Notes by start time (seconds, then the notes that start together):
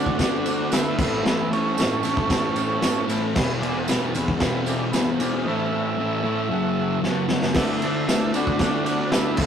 Already playing: D3 A3 D4 F#4 A4 D5
0.06 kick
0.18 D3 A3 D4 F#4 A4 D5, kick, snare, ride, tambourine
0.46 D4 F#4 A4 D5, ride, tambourine
0.71 D3 A3 B3 D4 E4 F#4 A4 E5, snare, ride, tambourine
0.99 A2 E3 A3 B3 E4 A4, kick, tambourine, crash
1.04 C#5
1.25 A2 E3 A3 B3 E4, snare, tambourine
1.50 E3 A3 C#4 E4 A4 C#5, ride
1.77 A2 E3 A3 E4 A4 C#5, snare, ride, tambourine
2.03 E3 A3, ride, tambourine
2.07 E4 A4 C#5
2.17 kick
2.30 A2 E3 E4 A4 C#5, kick, snare, ride, tambourine
2.34 A3
2.56 ride, tambourine
2.61 E4 A4 C#5
2.81 A2 E3 A3 E4 A4 C#5, snare, ride, tambourine
3.08 E3 A3 E4 A4 B4, ride, tambourine
3.33 E2 B2 E3 E4 G#4 B4, kick, snare, tambourine, crash
3.60 B2 E3 E4 G#4 D5, ride
3.87 E2 B2 E3 E4 G#4 B4, snare, ride, tambourine
4.15 B2 E3 E4 G#4, ride, tambourine
4.19 B4
4.28 kick
4.40 E2 B2 E3, kick, snare, ride, tambourine
4.45 E4 G#4 B4
4.66 E4 G#4 D5, ride, tambourine
4.91 E2 B2 E3 E4 G#4 B4, snare, ride, tambourine
5.19 B2 E3 E4 G#4 D5, ride, tambourine
5.44 A2 E3 A3 E4 A4 C#5 D#5
5.49 E5
5.72 E3 A3 E4 A4 C#5
5.97 A2 E3 A3
6.03 E4 A4 C#5
6.23 E3 A3 E4 A4 C#5
6.49 F#2 C#3 F#3 F#4 A4
6.53 C#5
6.80 F#4 A4 C#5
7.01 F#2 C#3 F#3, snare
7.09 F#4 A4 C#5
7.28 C#3 F#3, snare
7.34 F#4 A4 C#5
7.42 snare
7.53 D3 G#4, kick, snare, crash
7.57 A3 D4 E4 F#4 A4 D5, tambourine
7.80 D4 E4 A4, ride
7.85 A3 F#4 A4 D5
8.08 D3 A3 D4 E4 F#4 A4 D5, snare, ride, tambourine
8.34 A3 D4 F#4 A4 B4, ride, tambourine
8.47 kick
8.58 D3 D4 F#4 A4 D5, kick, snare, ride, tambourine
8.63 A3 D4
8.82 D4 F#4 A4 D5, ride
8.87 F#4, tambourine
9.11 B3 E4 F#4 A4 D5, snare, ride, tambourine
9.15 D3 A3 D4
9.35 B3 E4 A4 C#5, kick, crash
9.39 E3 A3 E4, tambourine